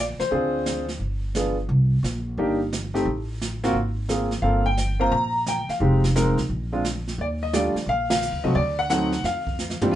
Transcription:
Already playing: upright bass A#1
0.19 grand piano C5, muted upright bass stroke, snare
0.31 upright bass D2, grand piano C4 D4 F4 G#4, brush sweep
0.66 snare, hi-hat pedal
0.89 snare
0.99 upright bass G1, brush sweep
1.35 grand piano B3 D4 F4 G#4, snare, hi-hat pedal
1.69 upright bass C2, brush sweep
2.03 upright bass A#1, snare, hi-hat pedal
2.37 upright bass G1, grand piano A#3 D4 D#4 G4, brush sweep
2.73 snare, hi-hat pedal
2.94 grand piano A3 C4 D#4 G4, snare
3.05 upright bass A1, brush sweep
3.41 snare, hi-hat pedal
3.63 grand piano A#3 C4 F4 F#4, snare
3.73 upright bass G#1, brush sweep
4.09 grand piano A#3 C4 F4 G#4, snare, hi-hat pedal
4.31 snare
4.42 upright bass G1, grand piano A#3 C4 F4 A4 F5, brush sweep
4.66 grand piano G5
4.77 snare, hi-hat pedal
5.00 grand piano A#3 C4 F4 C5 A#5
5.11 upright bass A#1, grand piano A#5, brush sweep
5.46 grand piano G5, snare, hi-hat pedal
5.68 grand piano F5, muted upright bass stroke, snare
5.80 upright bass F1, grand piano G#3 C4 D#4 G4, brush sweep
6.04 snare
6.16 grand piano G#3 C4 D#4 A#4, snare, hi-hat pedal
6.38 snare
6.49 upright bass A#1, brush sweep
6.72 grand piano G#3 C4 D4 F4
6.85 snare, hi-hat pedal
7.08 snare
7.18 upright bass D#2, grand piano D5, brush sweep
7.43 grand piano D#5
7.53 grand piano G3 A3 D4 F4 D5, snare, hi-hat pedal
7.75 muted upright bass stroke, snare
7.86 upright bass A#1, grand piano F5, brush sweep
8.10 grand piano F5, snare, ride
8.22 hi-hat pedal
8.32 upright bass D2
8.44 upright bass C2, grand piano F#3 A3 C4 F#4 D#5
8.55 upright bass D2, grand piano D5, brush sweep
8.79 grand piano F#5
8.90 grand piano F#3 A3 C4 D#4 F#5, snare, hi-hat pedal
9.12 snare
9.23 upright bass F2, grand piano F5, brush sweep, snare
9.47 kick
9.59 snare, hi-hat pedal
9.70 snare
9.81 grand piano A#2 F3 G3 C4 D4, muted upright bass stroke, floor tom
9.91 grand piano F4

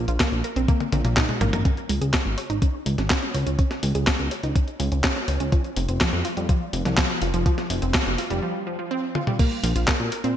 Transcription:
0.08 analog synth bass A#1, synth arpeggio sound F4, closed hi-hat
0.20 synth arpeggio sound A#3, kick, snare, clap, closed hi-hat
0.32 analog synth bass A#1, closed hi-hat
0.44 synth arpeggio sound A#4, closed hi-hat
0.56 analog synth bass A#1, synth arpeggio sound C4, closed hi-hat
0.68 synth arpeggio sound A#3, kick, closed hi-hat, high tom
0.80 closed hi-hat, high tom
0.92 analog synth bass A#1, synth arpeggio sound A#2, closed hi-hat, high tom
1.05 analog synth bass A#1, synth arpeggio sound A#2, closed hi-hat, mid tom
1.17 synth arpeggio sound D#4, kick, snare, clap, closed hi-hat, mid tom
1.29 synth arpeggio sound G#3, closed hi-hat, mid tom
1.41 analog synth bass G#1, synth arpeggio sound A#3, closed hi-hat, mid tom
1.53 analog synth bass G#1, synth arpeggio sound A#4, closed hi-hat, mid tom
1.65 synth arpeggio sound C#4, kick, closed hi-hat
1.77 closed hi-hat
1.89 analog synth bass C#2, synth arpeggio sound G#3, open hi-hat
2.01 analog synth bass C#2, synth arpeggio sound G#4, closed hi-hat
2.14 synth arpeggio sound C#4, kick, snare, clap, closed hi-hat
2.26 analog synth bass G#1
2.38 synth arpeggio sound C#5, open hi-hat
2.50 analog synth bass G#1, synth arpeggio sound D#4, closed hi-hat
2.62 synth arpeggio sound C#4, kick, closed hi-hat
2.86 analog synth bass C#2, synth arpeggio sound G#3, open hi-hat
2.98 analog synth bass G#1, synth arpeggio sound C#4, snare, closed hi-hat
3.10 synth arpeggio sound C#4, kick, snare, clap, closed hi-hat
3.22 synth arpeggio sound C#4, closed hi-hat
3.34 analog synth bass C#2, synth arpeggio sound C#5, open hi-hat
3.47 analog synth bass C#2, synth arpeggio sound C#4, closed hi-hat
3.59 synth arpeggio sound C#4, kick, closed hi-hat
3.71 snare, closed hi-hat
3.83 analog synth bass C#2, synth arpeggio sound G#3, open hi-hat
3.95 analog synth bass C#2, synth arpeggio sound G#4, closed hi-hat
4.07 synth arpeggio sound C#4, kick, snare, clap, closed hi-hat
4.19 analog synth bass C#2, closed hi-hat
4.31 synth arpeggio sound C#5, open hi-hat
4.43 analog synth bass C#2, synth arpeggio sound D#4, closed hi-hat
4.56 synth arpeggio sound C#4, kick, closed hi-hat
4.68 closed hi-hat
4.80 analog synth bass C#2, synth arpeggio sound G#3, open hi-hat
4.92 analog synth bass C#2, synth arpeggio sound C#4, closed hi-hat
5.04 synth arpeggio sound C#4, kick, snare, clap, closed hi-hat
5.16 synth arpeggio sound C#4, closed hi-hat
5.28 analog synth bass C#2, synth arpeggio sound C#5, open hi-hat
5.40 analog synth bass C#2, synth arpeggio sound C#4, closed hi-hat
5.52 synth arpeggio sound F3, kick, closed hi-hat
5.64 closed hi-hat
5.76 analog synth bass F1, synth arpeggio sound C3, open hi-hat
5.89 analog synth bass F1, synth arpeggio sound C4, closed hi-hat
6.01 synth arpeggio sound F3, kick, snare, clap, closed hi-hat
6.13 analog synth bass F2
6.25 synth arpeggio sound F4, open hi-hat
6.37 analog synth bass F2, synth arpeggio sound G3, closed hi-hat
6.49 synth arpeggio sound F3, kick, closed hi-hat
6.73 analog synth bass F1, synth arpeggio sound C3, open hi-hat
6.85 analog synth bass C2, synth arpeggio sound F3, snare, closed hi-hat
6.97 synth arpeggio sound F3, kick, snare, clap, closed hi-hat
7.10 synth arpeggio sound F3, closed hi-hat
7.22 analog synth bass F1, synth arpeggio sound F4, open hi-hat
7.34 analog synth bass F1, synth arpeggio sound F3, closed hi-hat
7.46 synth arpeggio sound F3, kick, closed hi-hat
7.58 snare, closed hi-hat
7.70 analog synth bass F1, synth arpeggio sound C3, open hi-hat
7.82 analog synth bass F1, synth arpeggio sound C4, closed hi-hat
7.94 synth arpeggio sound F3, kick, snare, clap, closed hi-hat
8.06 analog synth bass F1, closed hi-hat
8.18 synth arpeggio sound F4, open hi-hat
8.30 analog synth bass F1, synth arpeggio sound G3, closed hi-hat
8.42 synth arpeggio sound F3
8.67 synth arpeggio sound F3
8.79 synth arpeggio sound F3
8.91 synth arpeggio sound C4
9.15 synth arpeggio sound F4, high tom
9.27 synth arpeggio sound G3, mid tom
9.39 synth arpeggio sound A#3, kick, closed hi-hat, crash
9.51 closed hi-hat
9.63 analog synth bass A#1, synth arpeggio sound F3, open hi-hat
9.76 analog synth bass A#1, synth arpeggio sound F4, closed hi-hat
9.88 synth arpeggio sound A#3, kick, snare, clap, closed hi-hat
10.00 analog synth bass A#2, closed hi-hat
10.12 synth arpeggio sound A#4, open hi-hat
10.24 analog synth bass A#2, synth arpeggio sound C4, closed hi-hat

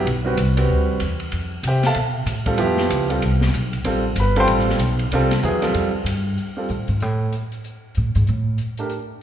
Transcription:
0.05 upright bass B1, ride
0.25 upright piano G3 C4 F#4 B4
0.37 upright bass C2, hi-hat pedal, ride
0.57 upright piano G3 C4 F#4 B4, ride
0.69 upright bass D2
1.00 upright bass E2, hi-hat pedal, ride
1.20 ride
1.32 upright bass F2, ride
1.63 upright bass C3, hi-hat pedal, ride
1.67 upright piano G4 C5 E5 G5
1.83 upright piano A4 E5 F5 A5, snare, ride
1.94 upright bass B2, ride
2.26 upright bass A2, hi-hat pedal, ride
2.46 upright piano G3 C4 F4 A4, kick, ride
2.58 upright bass F2, upright piano F3 B3 E4 G4, ride
2.77 snare
2.90 upright bass C#2, hi-hat pedal, ride
3.09 upright piano G3 C4 F4 A4, ride
3.22 upright bass C2, ride
3.41 snare
3.54 upright bass B1, hi-hat pedal, ride
3.73 ride
3.84 upright bass A1, upright piano G3 C4 F4 A4, ride
4.16 upright bass G1, hi-hat pedal, ride
4.20 upright piano B4 B5
4.36 upright piano G3 C4 F4 A4 C5 C6, ride
4.40 upright piano G5 A5
4.47 upright bass A1, ride
4.59 snare
4.70 snare
4.79 upright bass B1, hi-hat pedal, ride
4.99 ride
5.12 upright bass C2, upright piano G3 C4 F4 A4, ride
5.31 snare, ride
5.42 upright bass E2, upright piano F#3 B3 E4 G#4, hi-hat pedal
5.62 upright piano G3 C4 F4 A4, snare, ride
5.74 upright bass F2, ride
5.94 muted upright bass stroke
6.04 upright bass G2, hi-hat pedal, ride
6.38 closed hi-hat
6.57 upright piano G3 C4 F4 A4
6.69 upright bass A2, closed hi-hat
6.88 upright bass G#2, closed hi-hat
7.00 upright bass A2, closed hi-hat
7.33 closed hi-hat
7.52 closed hi-hat
7.64 closed hi-hat
7.95 upright bass A2, closed hi-hat
8.15 upright bass G#2, closed hi-hat
8.27 upright bass A2, closed hi-hat
8.58 closed hi-hat
8.77 upright piano A3 D4 G4 A#4, closed hi-hat
8.90 closed hi-hat

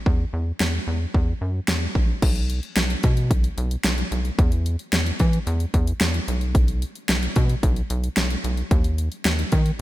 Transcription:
0.06 analog synth bass E2, kick
0.33 analog synth bass E2
0.60 analog synth bass E2, snare
0.87 analog synth bass E2
1.14 analog synth bass E2, kick
1.41 analog synth bass F#2
1.68 analog synth bass E2, snare
1.95 analog synth bass A#1, kick
2.22 analog synth bass B1, kick, closed hi-hat, crash
2.36 closed hi-hat
2.50 closed hi-hat
2.63 closed hi-hat
2.76 analog synth bass B1, snare, closed hi-hat
2.90 closed hi-hat
3.03 analog synth bass B2, kick, closed hi-hat
3.17 closed hi-hat
3.31 analog synth bass B1, kick, closed hi-hat
3.44 closed hi-hat
3.58 analog synth bass B1, closed hi-hat
3.71 closed hi-hat
3.84 analog synth bass B1, snare, closed hi-hat
3.98 closed hi-hat
4.12 analog synth bass B1, closed hi-hat
4.25 closed hi-hat
4.39 analog synth bass E2, kick, closed hi-hat
4.52 closed hi-hat
4.66 closed hi-hat
4.79 closed hi-hat
4.93 analog synth bass E2, snare, closed hi-hat
5.06 closed hi-hat
5.19 analog synth bass E3, kick, closed hi-hat
5.33 closed hi-hat
5.47 analog synth bass E2, closed hi-hat
5.60 closed hi-hat
5.74 analog synth bass E2, kick, closed hi-hat
5.87 closed hi-hat
6.01 analog synth bass E2, snare, closed hi-hat
6.14 closed hi-hat
6.28 analog synth bass B1, closed hi-hat
6.41 closed hi-hat
6.55 kick, closed hi-hat
6.68 closed hi-hat
6.82 closed hi-hat
6.95 closed hi-hat
7.09 analog synth bass B1, snare, closed hi-hat
7.23 closed hi-hat
7.36 analog synth bass B2, kick, closed hi-hat
7.50 closed hi-hat
7.63 analog synth bass B1, kick, closed hi-hat
7.76 closed hi-hat
7.90 analog synth bass B1, closed hi-hat
8.04 closed hi-hat
8.17 analog synth bass B1, snare, closed hi-hat
8.30 closed hi-hat
8.44 analog synth bass B1, closed hi-hat
8.57 closed hi-hat
8.71 analog synth bass D#2, kick, closed hi-hat
8.84 closed hi-hat
8.98 closed hi-hat
9.12 closed hi-hat
9.25 analog synth bass D#2, snare, closed hi-hat
9.39 closed hi-hat
9.52 analog synth bass D#3, kick, closed hi-hat
9.66 closed hi-hat

